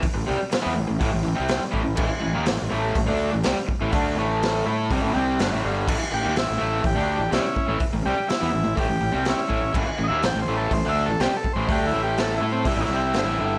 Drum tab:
CC |--------|x-------|--------|x-------|
HH |o-o-o-o-|--o-o-o-|o-o-o-o-|--o-o-o-|
SD |--o---o-|--o---o-|--o---o-|--o---o-|
BD |o---o--o|o---o--o|o---o---|o---o--o|

CC |--------|x-------|--------|
HH |o-o-o-o-|--o-o-o-|o-o-o-o-|
SD |--o---o-|--o---o-|--o---o-|
BD |o---o--o|o---o--o|o---o---|